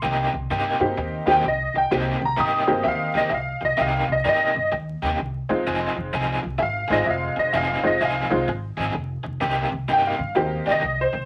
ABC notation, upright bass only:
X:1
M:4/4
L:1/8
Q:"Swing" 1/4=128
K:Cm
V:1 name="Upright bass" clef=bass
C,, C,, G,, G,, E,, E,, C,, C,, | C,, C,, G,, G,, E,, E,, C,, C,, | C,, C,, G,, G,, E,, E,, C,, =E,, | F,,, F,,, C,, C,, A,,, A,,, F,,, F,,, |
F,,, F,,, C,, C,, A,,, A,,, F,,, F,,, | C,, C,, G,, G,, E,, E,, C,, C,, |]